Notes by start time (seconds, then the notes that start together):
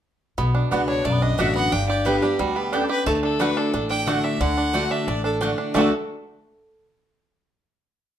0.38 B1 B2 B3
0.55 D4
0.71 C#2 B3 D4 F#4 D5 F#5
0.88 D4 C#5
1.05 B1 F#2 A3 D5
1.12 B3
1.22 D4 D#5
1.38 A1 D3 B3 D4 F#4 D5 E5 F#5
1.55 B3 F#5
1.72 G1 G2 D4 G5
1.89 G4 D5
2.05 D3 G3 B3 G4 B4 D5 G5
2.22 B3 D4 G4
2.39 D2 B2 G3 F#4
2.56 B3 G4
2.73 B3 C#4 D4 G4 A4 D5 G5
2.89 G4 B4
3.06 D2 D3 A3 A4
3.23 D4 A4
3.39 D3 A3 D4 F#4 B4 D5 F#5
3.57 D4 A4
3.74 A1 A2 D4
3.90 D4 G5
4.06 D3 A3 D4 F#4 D5 F#5
4.24 D4 E5
4.40 D2 D3 F#5
4.57 D4
4.73 D3 A3 D4 F#4 D5 F#5
4.91 D4 E5
5.07 A1 A2 D4 D5
5.24 D4 A4
5.41 D3 A3 D4 F#4 D5 F#5
5.58 D4
5.74 D2 D3 A3 D4 F#4 A4 D5 F#5
5.79 F#4 A4